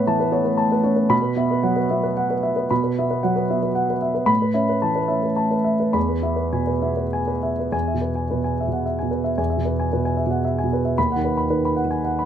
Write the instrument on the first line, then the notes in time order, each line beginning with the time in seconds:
grand piano
Already playing: A2 B3 B4 C#5 B5
0.07 E3 A5
0.20 B4
0.31 B3 C#5
0.45 B4
0.57 A5
0.72 B4
0.84 C#4 C#5
0.96 B4
1.09 B2 B5
1.22 B4
1.36 B3 E5
1.51 B4
1.63 F#3 F#5
1.76 B4
1.90 B3 E5
2.04 B4
2.17 F#5
2.30 B4
2.43 E5
2.56 B4
2.71 B2 B5
2.84 B4
2.99 B3 E5
3.11 B4
3.23 F#3 F#5
3.36 B4
3.50 B3 E5
3.63 B4
3.75 F#5
3.90 B4
4.02 E5
4.15 B4
4.26 A2 B5
4.42 B4
4.54 C#4 E5
4.69 B4
4.82 E3 A5
4.96 B4
5.08 C#4 E5
5.23 B4
5.36 A5
5.51 B4
5.64 E5
5.80 B4
5.93 E2 B5
6.09 B4
6.22 B3 E5
6.36 B4
6.53 B2 G#5
6.67 B4
6.82 B3 E5
6.97 B4
7.13 G#5
7.28 B4
7.43 E5
7.59 B4
7.72 E2 G#5
7.88 E5
7.94 B2
8.01 B4
8.15 G#5
8.31 B2 B4
8.44 G#5
8.61 E5
8.68 B2
8.73 F#5
8.86 E5
8.99 B2 G#5
9.11 B4
9.24 E5
9.38 E2 G#5
9.50 E5
9.57 B2
9.65 B4
9.80 G#5
9.93 B2 B4
10.05 G#5
10.17 E5
10.26 B2
10.31 F#5
10.45 E5
10.58 G#5
10.64 B2
10.73 B4
10.85 E5
10.98 D#2 B5
11.12 D#3 F#5
11.24 B4
11.37 B5
11.50 D#3 B4
11.65 B5
11.77 F#5
11.85 D#3
11.91 G#5
12.04 F#5
12.19 B5